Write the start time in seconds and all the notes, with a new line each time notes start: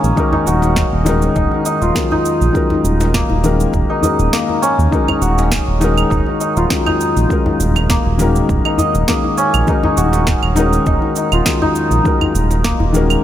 Already playing: D#3 G#3 A#3 C#4 D#4 F4 F#4 A#4 D#5
0.03 A#1, shaker
0.16 D#3 G#3 C#4 D#4 F#4 A#4, kick, shaker
0.32 D#4, djembe slap, djembe bass
0.46 D#1 F#4, djembe tone, shaker
0.62 djembe slap, shaker
0.76 kick, snare, shaker
0.93 D#1
1.04 D#3 G#3 C#4 D#4 F#4, djembe slap, djembe tone, shaker
1.09 A#4
1.22 shaker
1.36 D#1 D#4, kick, shaker
1.51 djembe tone
1.65 D#4, shaker
1.82 D#1 F4, shaker
1.94 D#3 F#3 G#3 C#4 A#4, kick, snare, shaker
2.11 D#4, djembe slap, djembe bass
2.25 shaker
2.41 A#1, shaker
2.53 D#3 F#3 G#3 C#4 A#4, kick, shaker
2.70 djembe slap, djembe bass
2.84 D#1, djembe tone, shaker
3.00 djembe slap, shaker
3.14 A#3, kick, snare, shaker
3.30 D#1, djembe bass
3.44 D#3 G#3 C#4 F#4 A#4, djembe slap, djembe tone, shaker
3.60 shaker
3.73 D#1, kick, shaker
3.90 D#4
4.01 D#3 G#3 C#4 F#4 A#4 D#5, djembe bass, shaker
4.19 D#1, shaker
4.33 A#3, snare, shaker
4.49 djembe tone
4.62 C#4, shaker
4.79 D#2, shaker
4.91 D#3 G#3 C#4 D#4 F#4 A#4, kick, shaker
5.08 D#4, djembe slap, djembe bass, claves
5.22 D#1 F#4, djembe tone, shaker
5.38 djembe slap, shaker
5.52 kick, snare, shaker
5.68 D#1
5.80 D#3 G#3 C#4 D#4 F#4, djembe slap, djembe tone, shaker
5.84 A#4
5.98 claves, shaker
6.10 D#1 D#4, kick, shaker
6.26 djembe tone
6.41 D#4, shaker
6.57 D#1 F4, shaker
6.70 D#3 F#3 G#3 C#4 A#4, kick, snare, shaker
6.86 D#4, djembe slap, djembe bass, claves
7.01 shaker
7.17 A#1, shaker
7.28 D#3 F#3 G#3 C#4, kick, shaker
7.33 A#4
7.46 djembe slap, djembe bass
7.60 D#1, djembe tone, shaker
7.76 djembe slap, claves, shaker
7.90 A#3, kick, snare, shaker
8.06 D#1
8.18 D#3 G#3 C#4 F#4 A#4, djembe slap, djembe tone, shaker
8.36 shaker
8.49 D#1, kick, shaker
8.65 D#4, claves
8.78 D#5, djembe bass, shaker
8.95 D#1, shaker
9.08 D#3 G#3 A#3 C#4 F#4 A#4, kick, snare, shaker
9.24 djembe tone
9.38 C#4, shaker
9.54 A#1, claves, shaker
9.67 D#3 G#3 C#4 D#4 F#4 A#4, kick, shaker
9.83 D#4, djembe slap, djembe bass
9.97 D#1 F#4, djembe tone, shaker
10.13 djembe slap, shaker
10.27 kick, snare, shaker
10.43 D#1, claves
10.55 D#3 G#3 C#4 D#4 F#4, djembe slap, djembe tone, shaker
10.59 A#4
10.73 shaker
10.86 D#1 D#4, kick, shaker
11.02 djembe tone
11.16 D#4, shaker
11.32 D#1 F4, claves, shaker
11.45 D#3 F#3 G#3 C#4 A#4, kick, snare, shaker
11.62 D#4, djembe slap, djembe bass
11.75 shaker
11.91 A#1, shaker
12.03 D#3 F#3 G#3 C#4 A#4, kick, shaker
12.21 djembe slap, djembe bass, claves
12.35 D#1, djembe tone, shaker
12.51 djembe slap, shaker
12.64 A#3, kick, snare, shaker
12.80 D#1, djembe bass
12.92 D#3 G#3 C#4 F#4 A#4, djembe slap, djembe tone, shaker
13.10 claves, shaker